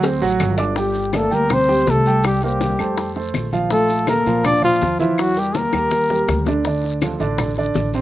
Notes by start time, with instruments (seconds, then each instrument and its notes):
Already playing: upright bass D2
0.03 grand piano C4 C5 C6, cowbell, high conga, long guiro, maracas
0.21 upright bass A1, grand piano F#3 F#4 F#5, high conga, maracas
0.40 upright bass G1, cowbell, high conga, short guiro, claves, maracas
0.58 grand piano D4 D5 D6, cowbell, short guiro, maracas
0.76 grand piano G3 G4 G5, trombone G3, trumpet G4, high bongo, long guiro, maracas
0.95 high bongo, high conga, maracas
1.13 trombone A3, grand piano A#3 A#4 D5, trumpet A4, high bongo, high conga, short guiro, claves, maracas
1.31 upright bass D2, grand piano G3 G4 G5, trombone A#3, trumpet A#4, high bongo, high conga, short guiro, maracas
1.49 trombone C4, high bongo, high conga, low conga, long guiro, claves, maracas
1.54 trumpet C5
1.69 grand piano G3 G4 G5, high bongo, high conga
1.87 upright bass C2, trombone A3, trumpet A4, high bongo, low bongo, high conga, short guiro, maracas
2.06 grand piano G3 G4 G5, short guiro, maracas
2.23 trombone G3, trumpet G4, high bongo, long guiro, claves, maracas
2.43 trombone G3, grand piano A#3 A#4 C5, trumpet G4, high bongo, high conga
2.61 high bongo, high conga, short guiro, maracas
2.79 upright bass F2, grand piano A3 A4 C5, high bongo, high conga, short guiro, claves, maracas
2.97 high bongo, high conga, long guiro, maracas
3.16 grand piano A3 A4 C5, high bongo, high conga
3.34 upright bass A#1, high bongo, low bongo, high conga, short guiro, claves, maracas
3.53 grand piano F3 F4 F5, high conga, short guiro, maracas
3.71 grand piano F3 F4 F5, trombone A3, trumpet A4, high bongo, high conga, long guiro, maracas
3.89 high bongo, high conga, maracas
4.07 grand piano A3 A4 A#4, trombone A#3, trumpet A#4, high bongo, high conga, short guiro, claves, maracas
4.26 upright bass A#2, grand piano F3 F4 F5, high bongo, high conga, short guiro, maracas
4.44 trombone D4, trumpet D5, high bongo, high conga, low conga, long guiro, claves, maracas
4.62 grand piano F3 F4 F5, trombone F3, trumpet F4, high bongo, high conga, low conga
4.81 upright bass E2, high bongo, low bongo, high conga, short guiro, maracas
4.99 grand piano E3 E4 E5, trombone F3, trumpet F4, high conga, short guiro, maracas
5.18 trombone F#3, trumpet F#4, high bongo, high conga, long guiro, claves, maracas
5.36 grand piano G3 G4 A#4, trombone G3, trumpet G4, high bongo, high conga, maracas
5.54 trombone A#3, trumpet A#4, high bongo, high conga, short guiro, maracas
5.72 upright bass D#2, grand piano G3 G4 A#4, high bongo, high conga, short guiro, claves, maracas
5.91 low bongo, high conga, long guiro, maracas
6.10 grand piano G3 G4 A#4, low bongo, high conga
6.28 upright bass D2, low bongo, high conga, short guiro, claves, maracas
6.46 grand piano D3 D4 D5, low bongo, high conga, short guiro, maracas
6.65 grand piano D3 D4 D5, high bongo, high conga, long guiro, maracas
6.84 high bongo, high conga
7.01 grand piano F3 F4 A4, high bongo, high conga, short guiro, claves, maracas
7.20 upright bass A1, grand piano D3 D4 D5, high bongo, high conga, short guiro, maracas
7.38 high bongo, high conga, low conga, long guiro, claves, maracas
7.57 grand piano D3 D4 D5, high bongo, high conga
7.75 upright bass A1, high bongo, low bongo, high conga, short guiro, maracas
7.93 grand piano C3 C4 C5, high conga, short guiro, maracas